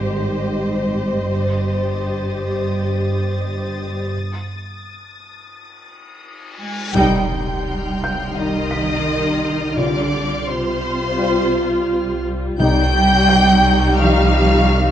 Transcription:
Already playing: double bass section G#1, cello section G#2, french horn section G3 C5, viola section G4, violin section C5 D#5
1.29 double bass section G1, cello section G2, viola section G4, violin section D#6 A6
4.13 reverse cymbal
6.59 cello section G#3, violin section G#5 G#6
6.93 double bass section C2, timpani C3, french horn section G3 D#4, cello section G3, viola section G3 D#4, violin section G5 C6 G6, impact
7.67 violin section F6
8.04 felt piano G6
8.35 cello section D#3, french horn section G3 D#4, violin section D#5 D#6
8.71 felt piano B6
9.76 timpani C3, cello section D3, french horn section G3 F4, viola section F4, violin section D5 D6
10.47 cello section C3, violin section C5 C6
11.17 french horn section G3 F4
12.58 double bass section C2, timpani C3, french horn section G3 D#4, cello section G3, viola section G3 D#4, violin section D#5 G5 C#6 G6
13.29 felt piano G6
13.99 cello section F3, french horn section G3 D#4, violin section F5 F6

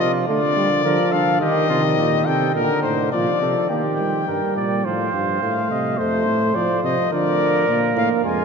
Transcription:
Already playing: euphonium F3, trumpet F4
0.00 bass trombone C3, trumpet D#5
0.28 bass trombone D3, euphonium A3, trumpet F4 D5
0.56 euphonium G3
0.84 bass trombone D3, euphonium F3, trumpet A#4
1.12 bass trombone D3, trumpet A4 F5
1.40 euphonium D#3, bass trombone D#3, trumpet G4 D#5
1.70 bass trombone C3, trumpet F4
1.98 bass trombone A#2, trumpet G4
2.26 bass trombone C3, trumpet A4 G5
2.55 bass trombone A#2, euphonium D3, trumpet A#4
2.83 bass trombone A2, trumpet C5
3.12 bass trombone A#2, euphonium F3, trumpet F4 D5
3.41 bass trombone C3, trumpet A4
3.69 bass trombone D#3, euphonium A#3, trumpet G4 G5
3.98 euphonium G3
4.27 bass trombone G2, euphonium G3, trumpet A#4
4.56 bass trombone A#2, trumpet D5
4.85 bass trombone A2, euphonium F3, trumpet C5 F5
5.14 bass trombone G2
5.41 bass trombone A2, euphonium A3, trumpet F5
5.70 bass trombone C3, trumpet D#5
5.98 bass trombone F2, euphonium A3, trumpet C5
6.27 bass trombone A2
6.55 bass trombone A2, euphonium F3, trumpet D5
6.83 bass trombone C3, trumpet D#5
7.11 bass trombone D3, euphonium F3, trumpet A#4 D5
7.68 bass trombone A#2, euphonium A#3
7.96 bass trombone A2, trumpet F5
8.24 bass trombone F2, euphonium G#3, trumpet F4 G#5

